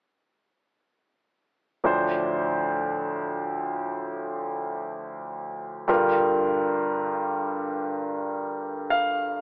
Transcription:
1.84 5.85 D2 soft
1.84 5.85 A2 soft
1.84 5.84 F3 soft
1.84 5.85 D4 soft
1.84 5.86 C5 soft
5.88 9.41 G2 soft
5.88 9.41 D3 soft
5.88 9.41 G3 soft
5.88 9.41 F4 soft
5.88 9.41 A#4 medium
8.90 9.37 F5 medium

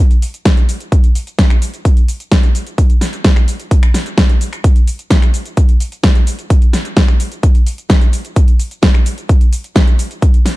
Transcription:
0.11 closed hi-hat soft
0.11 shaker soft
0.22 open hi-hat loud
0.22 shaker medium
0.34 closed hi-hat soft
0.34 shaker soft
0.45 kick loud
0.45 snare loud
0.45 closed hi-hat medium
0.45 shaker soft
0.57 closed hi-hat soft
0.57 shaker soft
0.69 open hi-hat loud
0.69 shaker medium
0.80 closed hi-hat soft
0.80 shaker soft
0.92 kick loud
0.92 closed hi-hat medium
0.92 shaker soft
1.04 closed hi-hat soft
1.04 shaker soft
1.15 open hi-hat loud
1.15 shaker medium
1.27 closed hi-hat soft
1.27 shaker soft
1.39 kick loud
1.39 snare loud
1.39 closed hi-hat medium
1.39 shaker soft
1.50 finger snap medium
1.50 shaker soft
1.62 open hi-hat loud
1.62 shaker medium
1.74 closed hi-hat soft
1.74 shaker soft
1.85 kick loud
1.85 closed hi-hat medium
1.85 shaker soft
1.97 closed hi-hat soft
1.97 shaker soft
2.08 open hi-hat loud
2.08 shaker medium
2.20 closed hi-hat soft
2.20 shaker soft
2.32 kick loud
2.32 snare loud
2.32 closed hi-hat medium
2.32 shaker soft
2.43 closed hi-hat soft
2.43 shaker soft
2.55 open hi-hat loud
2.55 shaker medium
2.67 closed hi-hat soft
2.67 shaker soft
2.78 kick loud
2.78 closed hi-hat medium
2.78 shaker soft
2.90 closed hi-hat soft
2.90 shaker soft
3.01 snare medium
3.01 open hi-hat loud
3.01 shaker medium
3.13 closed hi-hat soft
3.13 shaker soft
3.24 kick loud
3.24 snare loud
3.24 closed hi-hat loud
3.24 shaker soft
3.36 finger snap medium
3.36 shaker soft
3.48 open hi-hat loud
3.48 shaker medium
3.60 closed hi-hat soft
3.60 shaker soft
3.71 kick loud
3.71 closed hi-hat loud
3.71 shaker soft
3.83 finger snap medium
3.83 closed hi-hat soft
3.83 shaker soft
3.94 snare medium
3.94 open hi-hat loud
3.94 shaker medium
4.06 closed hi-hat soft
4.06 shaker soft
4.18 kick loud
4.18 snare loud
4.18 closed hi-hat loud
4.18 shaker soft
4.29 closed hi-hat soft
4.29 shaker soft
4.41 open hi-hat loud
4.41 shaker medium
4.53 finger snap medium
4.53 closed hi-hat soft
4.53 shaker soft
4.64 kick loud
4.64 closed hi-hat loud
4.64 shaker soft
4.76 closed hi-hat soft
4.76 shaker soft
4.87 open hi-hat loud
4.87 shaker medium
4.99 closed hi-hat soft
4.99 shaker soft
5.10 kick loud
5.10 snare loud
5.10 closed hi-hat loud
5.10 shaker soft
5.22 finger snap medium
5.22 closed hi-hat soft
5.22 shaker soft
5.34 open hi-hat loud
5.34 shaker medium
5.46 closed hi-hat soft
5.46 shaker soft
5.57 kick loud
5.57 closed hi-hat loud
5.57 shaker soft
5.69 closed hi-hat soft
5.69 shaker soft
5.80 open hi-hat loud
5.80 shaker medium
5.92 closed hi-hat soft
5.92 shaker soft
6.04 kick loud
6.04 snare loud
6.04 closed hi-hat loud
6.04 shaker soft
6.15 closed hi-hat soft
6.15 shaker soft
6.27 open hi-hat loud
6.27 shaker medium
6.39 closed hi-hat soft
6.39 shaker soft
6.50 kick loud
6.50 closed hi-hat loud
6.50 shaker soft
6.62 closed hi-hat soft
6.62 shaker soft
6.73 snare medium
6.73 open hi-hat loud
6.73 shaker medium
6.85 closed hi-hat soft
6.85 shaker soft
6.97 kick loud
6.97 snare loud
6.97 closed hi-hat loud
6.97 shaker soft
7.08 finger snap medium
7.08 shaker soft
7.20 open hi-hat loud
7.20 shaker medium
7.32 closed hi-hat soft
7.32 shaker soft
7.43 kick loud
7.43 closed hi-hat loud
7.43 shaker soft
7.55 closed hi-hat soft
7.55 shaker soft
7.67 open hi-hat loud
7.67 shaker medium
7.78 closed hi-hat soft
7.78 shaker soft
7.90 kick loud
7.90 snare loud
7.90 closed hi-hat medium
7.90 shaker soft
8.01 closed hi-hat soft
8.01 shaker soft
8.13 open hi-hat loud
8.13 shaker medium
8.25 closed hi-hat soft
8.25 shaker soft
8.36 kick loud
8.36 closed hi-hat loud
8.36 shaker soft
8.48 closed hi-hat soft
8.48 shaker soft
8.60 open hi-hat loud
8.60 shaker medium
8.71 closed hi-hat soft
8.71 shaker soft
8.83 kick loud
8.83 snare loud
8.83 closed hi-hat loud
8.83 shaker soft
8.94 finger snap medium
8.94 shaker soft
9.06 open hi-hat loud
9.06 shaker medium
9.18 closed hi-hat soft
9.18 shaker soft
9.29 kick loud
9.29 closed hi-hat medium
9.29 shaker soft
9.41 closed hi-hat soft
9.41 shaker soft
9.53 open hi-hat loud
9.53 shaker medium
9.64 closed hi-hat soft
9.64 shaker soft
9.76 kick loud
9.76 snare loud
9.76 closed hi-hat medium
9.76 shaker soft
9.88 closed hi-hat soft
9.88 shaker soft
9.99 open hi-hat loud
9.99 shaker medium
10.11 closed hi-hat soft
10.11 shaker soft
10.22 kick loud
10.22 closed hi-hat medium
10.22 shaker soft
10.34 closed hi-hat soft
10.34 shaker soft
10.46 snare medium
10.46 open hi-hat loud
10.46 shaker medium

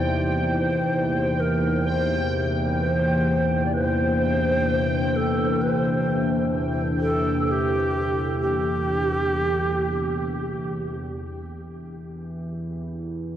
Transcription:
0.00 11.23 E2 medium
0.00 11.23 C3 medium
0.00 11.22 E3 medium
0.00 11.22 A#3 medium
0.00 3.69 D#4 medium
0.00 11.23 G4 medium
0.00 1.41 C5 loud
0.00 11.27 G5 medium
1.40 1.87 A#4 medium
1.85 2.53 C5 loud
2.80 3.63 C5 medium
3.38 11.22 D4 medium
3.65 3.75 D5 medium
3.73 3.86 B4 loud
3.86 5.18 C5 loud
5.16 5.63 A4 medium
5.62 5.76 B4 medium
5.76 6.55 C5 medium
7.01 7.47 A4 loud
7.47 7.52 A4 medium
7.51 8.40 G4 loud
8.41 10.72 G4 loud
11.23 13.37 E2 medium
11.23 13.37 E3 medium

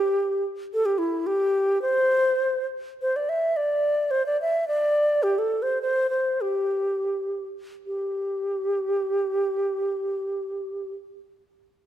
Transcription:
0.00 0.46 G4 medium
0.74 0.87 A4 medium
0.86 1.00 G4 medium
0.98 1.28 E4 medium
1.27 1.81 G4 medium
1.82 2.66 C5 medium
3.02 3.18 C5 medium
3.16 3.31 D5 medium
3.29 3.58 E5 medium
3.57 4.12 D5 medium
4.11 4.26 C5 medium
4.26 4.40 D5 medium
4.42 4.67 E5 medium
4.68 5.24 D5 medium
5.23 5.40 G4 medium
5.38 5.64 A4 medium
5.62 5.81 C5 medium
5.82 6.10 C5 medium
6.10 6.43 C5 medium
6.41 7.47 G4 medium
7.86 10.93 G4 medium

